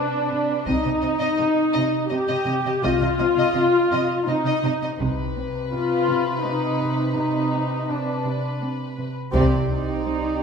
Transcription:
Already playing: C3 C4 D4 B4
0.30 C3
0.65 C2 C3 D#4 D#5, taiko
0.83 C3 D#5
1.02 C3 C4 D#5
1.19 C3 D#5
1.38 C3 D#5
1.73 C3 D#5
2.10 C3 C4 G4 D#5
2.27 C3 D#5
2.46 C3 D#5
2.64 C3 D#5
2.82 C2 C3 F4 D#5
3.00 C3 D#5
3.18 C3 C4 D#5
3.36 C3 D#5
3.54 C3 D#5
3.91 C3 D#5
4.27 C3 C4 D#4 D#5
4.45 C3 D#5
4.64 C3 D#5
4.82 C3 D#5
4.99 C2 C3 B4, taiko
5.37 C4
5.72 C3 F4
6.09 C3
6.45 C4 D#4
6.81 C3
7.16 C3 D#4
7.53 C4
7.89 C3 D4 B4
8.25 C3
8.61 C4
8.98 C3
9.33 C2 C3 C4 G4 D5, taiko
9.70 C3 D#4
10.07 C4

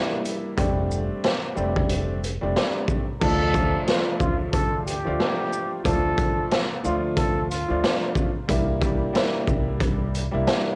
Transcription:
Already playing: G3 A#3 D4 E4
0.25 closed hi-hat, shaker
0.57 F1 G3 A3 C4 D4, kick, closed hi-hat
0.91 shaker
1.24 snare, closed hi-hat
1.55 F1 G3 A3 C4 D4, shaker
1.76 kick
1.89 closed hi-hat
2.24 closed hi-hat, shaker
2.41 F1 G3 A3 C4 D4
2.56 snare, closed hi-hat
2.88 kick, shaker
3.21 D2 F3 A3 D4 F4 A4, kick, crash
3.53 F3 A3 D4 F4, kick, closed hi-hat, shaker
3.87 F3 A3 D4 F4, snare, closed hi-hat
4.19 D2 F4, kick, shaker
4.52 A4, kick, closed hi-hat
4.86 G4, closed hi-hat, shaker
5.05 D2 F3 A3 D4 F4
5.20 snare, closed hi-hat
5.53 shaker
5.84 D2 F3 A3 D4 F4 A4, kick, closed hi-hat
6.18 kick, closed hi-hat, shaker
6.51 snare, closed hi-hat
6.83 D2 F3 A3 D4 F4, shaker
7.16 A4, kick, closed hi-hat
7.50 F4, closed hi-hat, shaker
7.68 D2 F3 A3 D4 F4
7.84 snare, closed hi-hat
8.15 kick, shaker
8.48 C2 G3 A#3 D4 E4, kick, closed hi-hat
8.81 G3 A#3 D4 E4, kick, closed hi-hat, shaker
9.13 G3 A#3 D4 E4, snare, closed hi-hat
9.47 C2, kick, shaker
9.80 kick, closed hi-hat
10.15 closed hi-hat, shaker
10.31 C2 G3 A#3 D4 E4
10.47 snare, closed hi-hat

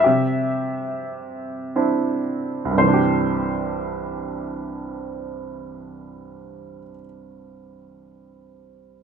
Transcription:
0.00 G4 E5
0.06 C3
1.76 C4 D4 E4
2.65 C2
2.71 G2
2.77 C3 C5
2.82 E3
2.87 D4
2.94 G4

